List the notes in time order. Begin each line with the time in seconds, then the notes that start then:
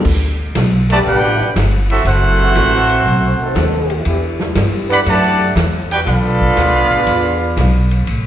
0.04 D2, kick, crash
0.55 B1, snare, hi-hat pedal, ride
0.90 D3 G3 A3 B3 F#4 G4 B4 D5 A5, ride
1.06 A1 B3 D4 G4 B4 F#5 G5
1.41 muted upright bass stroke
1.56 G1, snare, hi-hat pedal, ride
1.90 C4 E4 F#4 A4 E5, ride
2.05 F#1 A3 C4 E4 F#4 A4 C5 F#5, ride
2.39 E3 A3 C4 F#4
2.55 A1, snare, hi-hat pedal, ride
2.89 ride
3.05 B1
3.40 B2 D#3 C4 A4, muted upright bass stroke
3.55 D#2, snare, hi-hat pedal, ride
3.90 ride
4.05 E2 E3 D4 E4 G4, ride
4.40 snare
4.55 G2, snare, hi-hat pedal, ride
4.90 D3 G3 B3 G4 D5 F#5 B5, ride
5.06 F#2 B2 D3 A3 G4 D5 F#5 A5, ride
5.56 E2, snare, hi-hat pedal, ride
5.91 B3 D4 F#4 G4 B4 G5, ride
6.05 B1 D3 B3 F4 A4 D5 F5 B5, ride
6.41 kick
6.57 D2, snare, hi-hat pedal, ride
6.73 B1
6.89 A1 B3 D4 F4 G#4, ride
7.06 E2, ride
7.57 B1, snare, hi-hat pedal, ride
7.91 ride
8.07 A1, ride